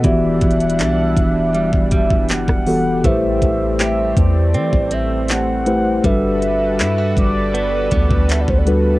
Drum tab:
HH |x---xxxxx---x---x---x---x---o---|x---x---x---x---x---x---x---x---|x---x---x---x---x---x---x---x---|
CP |--------x---------------x-------|--------x---------------x-------|--------x---------------x-------|
SD |--------------------------r-----|--------------------------------|--------------------------------|
BD |o---o-------o-----o-o-o---o-----|o---o-------o-----o-------------|o-----------o-------o-o---o-----|